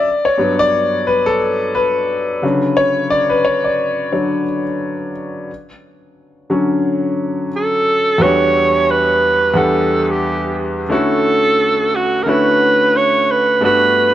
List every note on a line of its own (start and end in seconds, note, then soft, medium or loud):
0.00 0.27 D5 loud
0.25 0.33 C#5 medium
0.38 1.37 G2 medium
0.38 1.37 F#3 medium
0.38 1.37 B3 medium
0.59 1.09 D5 loud
1.07 1.27 B4 medium
1.26 1.76 A4 loud
1.75 2.80 B4 medium
2.42 5.11 C#3 medium
2.42 4.11 D3 medium
2.42 4.11 F#3 soft
2.77 3.12 C#5 loud
3.10 3.31 D5 loud
3.30 3.35 B4 medium
3.45 3.65 C#5 medium
3.64 4.63 D5 medium
4.12 4.43 D3 medium
4.12 4.43 F#3 soft
4.12 4.43 C#5 medium
6.50 7.48 D3 medium
6.50 7.48 F#3 medium
6.50 7.49 C#4 medium
7.56 8.24 A4 loud
8.18 9.46 E2 medium
8.18 8.27 F#3 medium
8.18 9.47 B3 medium
8.18 9.47 D4 medium
8.18 9.47 F#4 medium
8.18 8.92 C#5 loud
8.26 9.49 G3 medium
8.91 9.59 B4 loud
9.54 10.81 E2 medium
9.54 10.81 G3 medium
9.54 10.82 B3 medium
9.54 10.82 D4 medium
9.54 10.12 A4 loud
9.54 10.82 F#5 medium
10.11 10.58 G4 medium
10.89 12.16 D3 medium
10.89 12.17 A3 medium
10.89 12.17 C#4 medium
10.89 12.18 E4 medium
10.89 12.18 F#4 medium
10.94 11.97 A4 loud
11.95 12.24 F#4 medium
12.23 13.53 D3 medium
12.23 13.53 A3 medium
12.23 12.30 A#4 medium
12.27 13.54 C#4 medium
12.27 13.54 E4 medium
12.27 13.54 F#4 medium
12.27 12.98 B4 loud
12.97 13.32 C#5 loud
13.31 13.64 B4 loud
13.61 14.14 G2 medium
13.61 14.14 A3 medium
13.61 14.14 B3 medium
13.61 14.14 D4 medium
13.61 14.14 F#4 medium
13.61 14.14 B4 loud